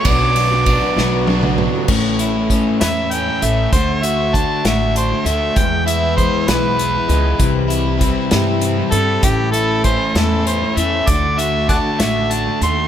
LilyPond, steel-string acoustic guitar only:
\new Staff \with { instrumentName = "Steel-string acoustic guitar" } { \time 6/8 \key a \major \tempo 4. = 65 <b, fis b d' fis'>8 <fis b d' fis'>16 <b d' fis'>8 <b d' fis'>16 <b, fis b d' fis'>8 <fis b d' fis'>16 <b d' fis'>8 <b d' fis'>16 | <a, e a cis' a'>4 <e a cis' a'>8 <a, e a cis' a'>4 <a cis' a'>8 | <d a d' fis'>4 <d a d' fis'>8 <d a d' fis'>4 <a d' fis'>8 | <e, b, e gis b e'>4 <e gis e'>8 <e, b, e gis b e'>4 <e gis b e'>8 |
<c e g c' e'>4 <e g c' e'>8 <c e g c' e'>4 <g c' e'>8 | <a, e a cis' e'>4 <e a cis' e'>8 <a, e a cis' e'>4 <a cis' e'>8 | <d a d' fis'>4 <d a d' fis'>8 <d a d' fis'>4 <a d' fis'>8 | }